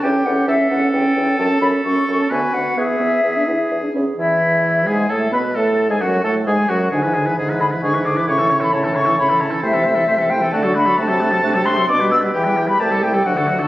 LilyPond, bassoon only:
\new Staff \with { instrumentName = "Bassoon" } { \clef bass \time 3/4 \key a \mixolydian \tempo 4 = 132 e,8 e,8 e,8 e,8 e,8 e,8 | \key a \major fis,8 fis,8 fis,8 fis,8 d,8 d,8 | e,8 e,8 e,8 e,8 e,8 e,8 | e,4. gis,8 a,8 b,8 |
a,8. gis,16 fis,8 a,8 gis,8 fis,8 | gis,4 gis,4 gis,4 | a,4 a,4 a,4 | \key a \dorian c4 c4 d4 |
c4 c4 b,4 | e,4 c,4 d,4 | }